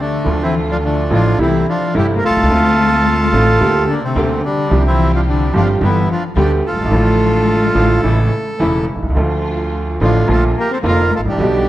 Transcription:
Already playing: upright bass D2, upright piano D2 C3 D3 F3 A3 D4
0.00 cello D3, bandoneon A3 D4
0.24 upright bass D2, upright piano D2 D3 F3 A3 F4, string section A3 D4 F4
0.41 cello E3, bandoneon C4 E4
0.71 cello F3, bandoneon D4 F4
0.83 cello D3, bandoneon A3 D4
1.10 upright bass A1, upright piano A1 A2 D3 F3 A3 F4, cello F3, string section A3 D4 F4, bandoneon D4 F4
1.38 upright bass C2, upright piano C2 C3 G3 A3 E4, cello E3, string section A3 C4 E4, bandoneon C4 E4
1.68 cello F3, bandoneon D4 F4
1.94 upright piano G1 G2 C3 G3 A3 E4, upright bass G1, cello G3, string section A3 C4 E4, bandoneon E4 G4
2.16 cello A#3, bandoneon A#4
2.23 cello A3, bandoneon F4 A4
2.29 upright bass B1, upright piano B1
2.36 upright bass C2, upright piano C2
2.43 upright bass C#2, upright piano C#2
2.49 upright bass D2, upright piano D2 D3 A3 C4, string section C4 D4 F4
2.53 upright piano F4
3.32 upright bass A1, upright piano A1 A2 D3 A3 C4 F4, string section C4 D4 F4
3.60 upright bass D2, upright piano D2 D3 G3 A#3 G4, string section A#3 D4 G4
3.88 cello D3, bandoneon A#3 D4
4.03 cello C3, bandoneon A3 C4
4.15 upright bass D2, upright piano D2 D3 G3 A#3 G4, string section A#3 D4 G4
4.44 cello D3, bandoneon G3 D4
4.69 upright bass C2, upright piano C2 C3 F3 G3 C4 G4, string section C4 F4 G4
4.85 cello E3, bandoneon C4 E4
5.13 cello F3, bandoneon D4 F4
5.27 cello D3, bandoneon G3 D4
5.54 upright bass G1, upright piano G1 G2 F3 G3 C4 G4, cello F3, string section C4 F4 G4, bandoneon D4 F4
5.81 upright bass G1, upright piano G1 G2 D3 G3 B3 G4, cello E3, string section B3 D4 G4, bandoneon E4
5.85 bandoneon B3
6.09 cello F3, bandoneon D4 F4
6.35 upright bass D2, upright piano D2 D3 G3 B3 G4, cello G3, string section B3 D4 G4
6.40 bandoneon D4 G4
6.64 cello A3, bandoneon F4 A4
6.71 upright bass F#1, upright piano F#1
6.77 upright bass G1, upright piano G1
6.84 upright bass G#1, upright piano G#1
6.90 upright bass A1, upright piano A1 A2 D3 F3 A3, string section A3 D4 F4
6.94 upright piano F4
7.75 upright bass A1, upright piano A1 A2 D3 F3 A3 F4, string section A3 D4 F4
8.03 upright piano A1 A2 C#3 E3 A3 E4, upright bass A1, string section A3 C#4 E4
8.60 upright bass E1, upright piano E1 E2 C#3 E3 A3 E4, string section A3 C#4 E4
8.95 upright piano B1, upright bass B1
9.02 upright bass C2, upright piano C2
9.09 upright bass C#2, upright piano C#2
9.15 upright bass D2, upright piano D2 D3 F3 A3 F4, string section A3 D4 F4
10.00 upright bass A1, upright piano A1 A2 D3 F3 A3 F4, cello F3, string section A3 D4 F4, bandoneon D4
10.04 bandoneon F4
10.28 upright piano A#1 A#2 D3 F3 A#3 F4, upright bass A#1, cello A3, string section A#3 D4 F4
10.32 bandoneon F4 A4
10.56 cello A#3, bandoneon G4 A#4
10.71 cello C4, bandoneon A4 C5
10.83 upright bass F1, upright piano F1 F2 D3 F3 A#3 F4, cello A#3, string section A#3 D4 F4
10.87 bandoneon F4 A#4
11.11 cello A3
11.16 upright bass G#1, upright piano G#1, bandoneon F4 A4
11.25 upright bass A1, upright piano A1, cello G3
11.29 upright bass A#1, upright piano A#1, bandoneon D4 G4
11.38 upright bass B1, upright piano B1 B2 D3 G3 B3 G4, string section B3 D4 G4

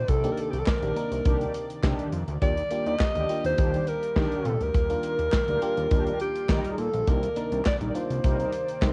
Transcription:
Already playing: analog synth pad C3 D#3 A#3 D5, alto saxophone C5
0.08 analog synth bass C2, fm electric piano D#4 G4, alto saxophone A4, kick, closed hi-hat
0.24 fm electric piano A#3 D4 D#4 G4, closed hi-hat
0.32 alto saxophone A#4
0.37 alto saxophone A4, closed hi-hat
0.50 analog synth bass C2, alto saxophone G4, closed hi-hat
0.59 alto saxophone A4
0.66 alto saxophone A#4, kick, snare, clap
0.68 clap
0.82 analog synth bass A#1, analog polysynth D#3 D4 G4, closed hi-hat
0.96 fm electric piano A#3 D4 D#4 A#4, closed hi-hat
1.11 analog synth bass C2, closed hi-hat
1.25 analog synth bass C2, analog polysynth D#3 D4 G4, kick, closed hi-hat
1.40 analog polysynth D#3 D4 G4, closed hi-hat
1.54 closed hi-hat
1.70 closed hi-hat
1.83 analog synth bass C3, analog polysynth D#3 D4 G4, kick, snare, clap
1.99 closed hi-hat
2.12 analog synth bass F2, closed hi-hat
2.28 analog synth bass D2, closed hi-hat
2.41 analog synth bass D#2, analog synth pad D#3 G3 G4, fm electric piano A#3 D4 F4 G4, alto saxophone D5, kick, closed hi-hat
2.57 closed hi-hat
2.70 fm electric piano A#3 D4 F4 G4, closed hi-hat
2.86 analog synth bass D#2, alto saxophone D#5, closed hi-hat
2.99 kick, snare, clap
3.01 clap
3.15 analog synth bass D2, analog polysynth D#3 D4 G4, closed hi-hat
3.29 fm electric piano A#3 D4 F4 G4, closed hi-hat
3.44 analog synth bass D#2, alto saxophone C5, closed hi-hat
3.58 analog synth bass D#2, analog polysynth D#3 D4 G4, kick, closed hi-hat
3.74 analog polysynth D#3 D4 G4, closed hi-hat
3.87 alto saxophone A#4, closed hi-hat
4.03 closed hi-hat
4.16 analog synth bass D#3, analog polysynth D#3 D4 G4, kick, snare, clap
4.32 closed hi-hat
4.45 analog synth bass A#2, alto saxophone A4, closed hi-hat
4.61 analog synth bass D2, alto saxophone A#4, closed hi-hat
4.74 analog synth bass D#2, fm electric piano F4 G4, analog synth pad F4, kick, closed hi-hat
4.90 fm electric piano A#3 D4 F4 A#4, closed hi-hat
5.03 closed hi-hat
5.19 analog synth bass D#2, closed hi-hat
5.32 kick, snare, clap
5.34 clap
5.48 analog synth bass D2, analog polysynth D#3 D4 G4, closed hi-hat
5.62 fm electric piano A#3 D4 F4 G4, closed hi-hat
5.77 analog synth bass D#2, closed hi-hat
5.91 analog synth bass D#2, analog polysynth D#3 D4 G4, kick, closed hi-hat
6.07 analog polysynth D#3 D4 G4, closed hi-hat
6.20 alto saxophone G4, closed hi-hat
6.36 closed hi-hat
6.49 analog synth bass D#3, analog polysynth G3 D#4 A#4, kick, snare, clap
6.65 closed hi-hat
6.72 alto saxophone G#4
6.78 analog synth bass A#2, alto saxophone A4, closed hi-hat
6.94 analog synth bass A#1, closed hi-hat
7.07 analog synth bass C2, analog synth pad C3 D#3 D5, fm electric piano A#3 D4 D#4 G4, alto saxophone A#4, kick, closed hi-hat
7.23 closed hi-hat
7.36 fm electric piano A#3 D4 D#4 A#4, closed hi-hat
7.52 analog synth bass C2, closed hi-hat
7.65 alto saxophone D5, kick, snare, clap
7.67 clap
7.81 analog synth bass A#1, analog polysynth G3 D#4 A#4, closed hi-hat
7.89 alto saxophone D5
7.94 fm electric piano A#3 D4 D#4 F4, alto saxophone C5, closed hi-hat
8.10 analog synth bass C2, closed hi-hat
8.24 analog synth bass C2, analog polysynth G3 D#4 A#4, kick, closed hi-hat
8.40 analog polysynth G3 D#4 A#4, closed hi-hat
8.53 closed hi-hat
8.69 closed hi-hat
8.82 analog synth bass C3, analog polysynth G3 D#4 A#4, kick, snare, clap

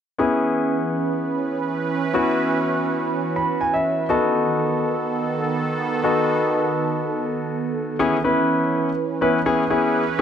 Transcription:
0.18 analog synth pad E3 C#4 B4, grand piano B3 C#4 E4 G#4
2.14 grand piano B3 C#4 E4 F#4
3.36 grand piano B5
3.61 grand piano G#5
3.74 grand piano E5
4.09 analog synth pad D#3 B3 A4, grand piano B3 D#4 F#4 A4
6.04 grand piano B3 D#4 F#4 A4
7.99 analog synth pad E3 C#4 B4, grand piano B3 C#4 E4 G#4
8.24 grand piano B3 C#4 E4 B4
9.21 grand piano B3 C#4 E4 B4
9.46 grand piano B3 C#4 E4 G#4
9.70 grand piano B3 C#4 E4 G#4
10.19 grand piano B3

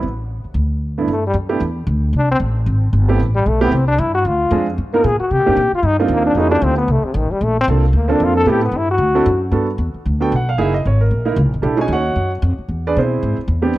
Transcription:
0.03 upright bass A1
0.44 muted upright bass stroke
0.54 upright bass D2
0.98 grand piano G2 A3 B3 D4 E4
1.08 upright bass G2, trombone A3
1.27 trombone G3
1.34 upright bass F#2
1.49 grand piano A3 B3 D4 E4 G4
1.60 upright bass E2
1.87 upright bass D2
2.13 upright bass C2
2.17 trombone D4
2.31 trombone C4
2.40 upright bass A1
2.66 upright bass G#1
2.93 upright bass G1
3.08 grand piano A3 B3 C4 E4 G4
3.20 upright bass A1
3.35 trombone G3
3.46 upright bass B1, trombone A3
3.61 grand piano A3 B3 C4 E4 G4, trombone B3
3.72 upright bass C2, trombone C4
3.88 trombone D4
3.98 upright bass G2, trombone E4
4.14 trombone F#4
4.25 upright bass D2, trombone F4
4.51 upright bass F2, grand piano G#3 C4 D4 F4 G#4
4.78 upright bass G2
4.93 grand piano A#3 B3 D#4 F4 A#4, trombone A#4
5.04 upright bass A#2, trombone G#4
5.20 trombone F#4, muted upright bass stroke
5.31 upright bass C3, trombone G4
5.40 upright bass A#2
5.46 upright bass G2, grand piano A#3 C4 D4 D#4 G4
5.56 upright bass A#2
5.72 trombone F4, muted upright bass stroke
5.83 upright bass G2, trombone D#4
5.99 trombone G3, grand piano A#3 C4 D4 D#4 F4
6.08 upright bass D#2
6.14 trombone A#3
6.26 trombone D4
6.35 upright bass F2, grand piano A#3 C#4 E4 F#4 G#4, trombone D#4
6.51 grand piano A3 C4 D#4 F4 G4, trombone D4
6.62 upright bass D2, trombone C4
6.77 trombone B3
6.88 upright bass C2, trombone A3
7.03 trombone C3, muted upright bass stroke
7.14 upright bass A1, trombone D#3
7.31 trombone G3, muted upright bass stroke
7.41 upright bass A#1, trombone A3
7.61 trombone C4
7.68 upright bass C2, grand piano A#3 C4 D4 F4 A4
7.93 upright bass D2, trombone A#3
8.08 grand piano A#3 C4 D4 F4 A4, trombone D4
8.20 upright bass F2, trombone F4
8.37 trombone A4
8.46 upright bass A2, grand piano B3 C4 E4 G4 A4
8.50 trombone G4
8.65 trombone B3
8.72 upright bass G2
8.77 trombone E4
8.91 trombone F#4
8.98 upright bass D2
9.15 grand piano C4 D4 E4 F#4 A4
9.26 upright bass F#2
9.51 upright bass G2, grand piano B3 D4 F#4 A4
9.78 upright bass E2
9.94 muted upright bass stroke
10.05 upright bass D2
10.20 grand piano B3 D4 F#4 A4 G5
10.32 upright bass B1, grand piano F#5
10.49 grand piano F5
10.58 upright bass F#1, grand piano A#3 D#4 E4 G#4 E5
10.74 grand piano D#5
10.85 upright bass G#1, grand piano C#5
11.01 grand piano A#4
11.11 upright bass A#1
11.25 grand piano A#3 D#4 E4 A#4
11.36 upright bass C#2
11.45 upright bass A#1
11.54 upright bass F#1
11.62 upright bass B1, grand piano D4 E4 G4 A4
11.76 grand piano C#4 D#4 F#4 G#4
11.81 grand piano G#4 C#5 D#5 G#5
11.88 upright bass D#2
11.93 grand piano F#4 C#5 D#5 F#5
12.16 upright bass F#2
12.42 upright bass F2
12.58 muted upright bass stroke
12.69 upright bass E2
12.87 grand piano D4 G#4 B4 D5
12.96 upright bass B2, grand piano C4 E4 G#4 C5
13.23 upright bass G#2
13.38 muted upright bass stroke
13.48 upright bass E2
13.62 grand piano B3 C4 D4 G4

